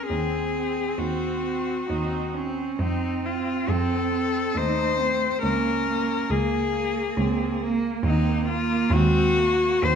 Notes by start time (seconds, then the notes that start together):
0.07 D#2 C4 G#4
0.56 C4
0.98 D#2 C4 F#4
1.46 C4
1.89 D#2 C4 D#4
2.34 C4 C#4
2.78 F2 C4 D#4
3.23 C4 F4
3.67 F2 C4 A4
4.11 C4
4.55 D#2 A3 D#4 C5
4.97 A3 C4
5.42 C#2 A#3 C#4 A#4
5.88 A#3
6.29 C#2 A#3 G#4
6.75 A#3
7.17 C#2 A#3 C4
7.61 A#3
8.04 D#2 C4 D#4
8.48 A#3 F4
8.90 D#2 G#3 C4 F#4
9.36 A#3
9.83 D#2 C4 C5